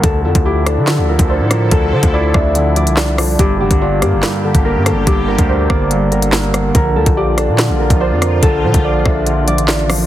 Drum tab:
HH |x--x--x-x--x--x-|x--x----x-xx--o-|x--x--x-x--x--x-|x--x----x-xx--x-|
CP |--------x-------|------------x---|--------x-------|------------x---|
SD |------r-o-----r-|------r-----o-r-|------r-o-----r-|------r-----o-r-|
BD |o--o-------o----|o--o--o---------|o--o-------o----|o--o--o---------|

HH |x--x--x-x--x--x-|x--x----x-xx--o-|
CP |--------x-------|------------x---|
SD |------r-o-----r-|------r-----o-r-|
BD |o--o-------o----|o--o--o---------|